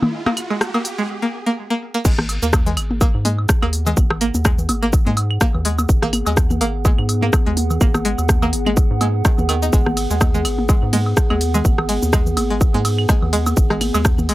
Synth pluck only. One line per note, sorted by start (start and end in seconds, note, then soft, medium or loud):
0.26 0.29 A#3 loud
0.50 0.52 G#3 loud
0.74 0.77 A#3 loud
0.98 1.00 G#3 loud
1.22 1.25 A#3 loud
1.46 1.49 A#3 loud
1.70 1.73 A#3 loud
1.94 1.97 A#3 loud
2.05 2.07 G#3 loud
2.42 2.45 A#3 loud
2.66 2.68 G#3 loud
3.01 3.04 A#3 loud
3.25 3.27 G#3 loud
3.62 3.65 A#3 loud
3.87 3.89 G#3 loud
4.21 4.24 A#3 loud
4.45 4.47 G#3 loud
4.83 4.85 A#3 loud
5.07 5.09 G#3 loud
5.41 5.44 A#3 loud
5.65 5.67 G#3 loud
6.03 6.05 A#3 loud
6.27 6.29 G#3 loud
6.61 6.64 A#3 loud
6.85 6.87 G#3 loud
7.22 7.25 A#3 loud
7.46 7.48 G#3 loud
7.81 7.84 A#3 loud
8.05 8.07 G#3 loud
8.42 8.45 A#3 loud
8.66 8.68 G#3 loud
9.01 9.06 G#3 medium
9.25 9.27 D#3 medium
9.49 9.54 D#3 loud
9.62 9.66 D#4 medium
9.73 9.75 G#3 loud
10.11 10.13 G#3 medium
10.34 10.36 G#3 loud
10.69 10.72 G#3 medium
10.93 10.95 G#3 loud
11.30 11.33 G#3 medium
11.54 11.56 G#3 loud
11.89 11.92 G#3 medium
12.13 12.15 G#3 loud
12.50 12.53 G#3 medium
12.74 12.76 G#3 loud
13.09 13.12 G#3 medium
13.33 13.35 G#3 loud
13.71 13.73 G#3 medium
13.94 13.96 G#3 loud
14.29 14.32 G#3 medium